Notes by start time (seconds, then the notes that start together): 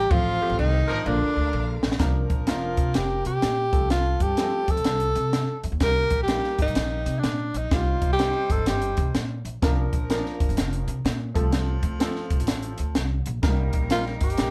Already playing: G4
0.11 A1 F3 A3 C4 F4 A4 F5, kick
0.41 A3 C4 G4
0.50 A1
0.59 C2 D#3 D#4
0.87 A1 F3 D4 A#4
1.04 A#1 D3 A#3 D4 F4 A#4 F5
1.22 muted upright bass stroke
1.36 D2
1.53 A#1
1.83 A#1, snare
1.91 snare
1.99 C2 F3 A#3 D4 A#4, kick, snare, closed hi-hat
2.30 A#1, kick, closed hi-hat
2.47 F1 F3 A#3 D4 F4 A#4, snare, closed hi-hat
2.77 C3, kick, closed hi-hat
2.94 F1 G4, snare, closed hi-hat
3.25 C3 G4, closed hi-hat
3.42 A#2, snare, closed hi-hat
3.72 C2 F3 A3 C4 A4, kick, closed hi-hat
3.90 F4, snare, closed hi-hat
4.20 G2 G4, kick, closed hi-hat
4.37 F3 A3 C4 G#4, snare, closed hi-hat
4.44 A4
4.68 F2 A4, kick, closed hi-hat
4.77 C2, closed hi-hat
4.84 C2, snare, closed hi-hat
5.00 closed hi-hat
5.15 C3, closed hi-hat
5.33 snare, closed hi-hat
5.64 F2, closed hi-hat
5.72 D#2
5.80 C2 D#3 G3 A#3 G4 A#4, kick, snare, closed hi-hat
6.10 A#1, kick, closed hi-hat
6.23 G4
6.28 D#3 G3 A#3 G4, snare, closed hi-hat
6.44 snare
6.59 G1 D#4, kick, closed hi-hat
6.67 C2, closed hi-hat
6.75 A#1, snare, closed hi-hat
7.06 C3, closed hi-hat
7.19 D4
7.23 A#2, snare, closed hi-hat
7.54 A#1 D#4, closed hi-hat
7.71 C2 D#3 G3 C4 D#4 F4 G4 C5, kick, snare, closed hi-hat
8.02 C2, kick, closed hi-hat
8.13 G4
8.19 D#3 G3 C4 G4, snare, closed hi-hat
8.50 G1 A4, kick, closed hi-hat
8.58 A1
8.66 G1 G4, snare, closed hi-hat
8.82 closed hi-hat
8.97 C3, kick, closed hi-hat
9.15 A#2, snare, closed hi-hat
9.45 A#1, closed hi-hat
9.62 C2 F3 A#3 D4 A#4, kick, snare, closed hi-hat
9.93 A#1, kick, closed hi-hat
10.10 F3 A#3 C#4 A#4, snare, closed hi-hat
10.16 D4
10.26 snare
10.40 F1, kick, closed hi-hat
10.49 G1, closed hi-hat
10.57 F1, snare, closed hi-hat
10.73 closed hi-hat
10.87 C3, closed hi-hat
11.05 A#2, snare, closed hi-hat
11.34 C2 F3 A3 C4 A4, kick, closed hi-hat
11.53 snare, closed hi-hat
11.83 D2, kick, closed hi-hat
12.00 F3 A3 C4 A4, snare, closed hi-hat
12.16 snare
12.30 C2, kick, closed hi-hat
12.40 A1, closed hi-hat
12.47 snare, closed hi-hat
12.62 closed hi-hat
12.78 D2, closed hi-hat
12.95 C2, snare, closed hi-hat
13.26 A#1, closed hi-hat
13.42 C2 F3 G3 A#3 D#4 A#4, kick, snare, closed hi-hat
13.48 G3
13.73 A#1, kick, closed hi-hat
13.90 F#3 A#3 D#4 F4 A#4, snare, closed hi-hat
13.96 G3
14.06 snare
14.21 G1 G4, kick, closed hi-hat
14.30 closed hi-hat
14.37 A#1, snare, closed hi-hat